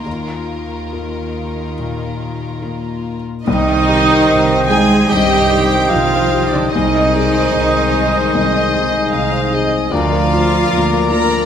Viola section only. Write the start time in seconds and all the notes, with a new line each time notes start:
Already playing: A#3
3.47 D#4
4.68 G#4
5.10 G4
5.91 F4
6.52 D4
6.73 D#4
9.91 F4
11.12 A#4